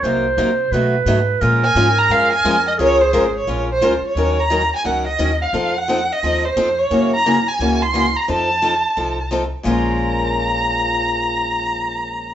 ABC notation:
X:1
M:4/4
L:1/16
Q:"Swing" 1/4=175
K:Bbm
V:1 name="Violin"
z16 | z2 a4 b2 f2 a4 e2 | d2 c4 d4 c4 d2- | d2 b4 a2 g2 e4 f2- |
f2 g4 e4 c4 d2- | d2 b4 a4 c'4 b2 | =a12 z4 | b16- |
b16 |]
V:2 name="Clarinet"
c8 =B8 | B16 | A8 z4 F4 | z16 |
z16 | z16 | z16 | z16 |
z16 |]
V:3 name="Steel-string acoustic guitar"
[C,G,B,EB]2 z2 [C,G,B,EB] z3 [=B,,^F,=A,^D^F]2 z2 [B,,F,A,DF] z3 | [F,A,DFB]2 z2 [F,A,DFB] z3 [F,A,DFB]2 z2 [F,A,DFB] z3 | [F,A,DFB]2 z2 [F,A,DFB] z3 [F,A,DFB]2 z2 [F,A,DFB] z3 | [E,G,DEB]2 z2 [E,G,DEB] z3 [E,G,DEB]2 z2 [E,G,DEB] z3 |
[F,CE=A]2 z2 [F,CEA] z3 [F,CEA]2 z2 [F,CEA] z3 | [D,_F,B,DG]2 z2 [D,F,B,DG] z3 [D,F,B,DG]2 z2 [D,F,B,DG] z3 | [F,CE=A]2 z2 [F,CEA] z3 [F,CEA]2 z2 [F,CEA] z3 | [B,,F,A,DFB]16- |
[B,,F,A,DFB]16 |]
V:4 name="Upright bass" clef=bass
C,,4 C,4 =B,,4 A,,4 | B,,4 A,,4 G,,4 F,,4 | D,,4 A,,,4 B,,,4 D,,2 z2 | E,,8 D,,4 E,,4 |
F,,8 E,,4 F,,4 | G,,8 D,,8 | F,,8 C,,8 | B,,,16- |
B,,,16 |]